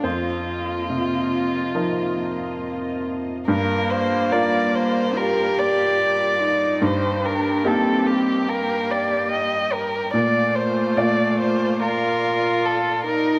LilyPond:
<<
  \new Staff \with { instrumentName = "Violin" } { \time 4/4 \key g \minor \tempo 4 = 72 f'2.~ f'8 r8 | bes'8 c''8 d''8 c''8 bes'8 d''4. | c''8 bes'8 a'8 g'8 bes'8 d''8 ees''8 bes'8 | d''8 c''8 d''8 c''8 bes'4 a'8 bes'8 | }
  \new Staff \with { instrumentName = "String section" } { \time 4/4 \key g \minor <bes f' ees''>1 | <bes f' d''>1 | <bes g' g''>1 | <f' d'' f''>1 | }
  \new Staff \with { instrumentName = "Cello" } { \time 4/4 \key g \minor bes2.~ bes8. r16 | bes2 g'4. ees'8~ | ees'8 d'8 c'4 bes4. r8 | a2 f'4. ees'8 | }
  \new Staff \with { instrumentName = "Upright piano" } { \time 4/4 \key g \minor c''2. r4 | r1 | r1 | r1 | }
  \new Staff \with { instrumentName = "Upright piano" } { \time 4/4 \key g \minor f,4 c4 <f ees' bes'>2 | g,4 <bes f' bes'>2. | g,4 <bes ees' g'>2. | bes,4 <bes, f' d''>2. | }
>>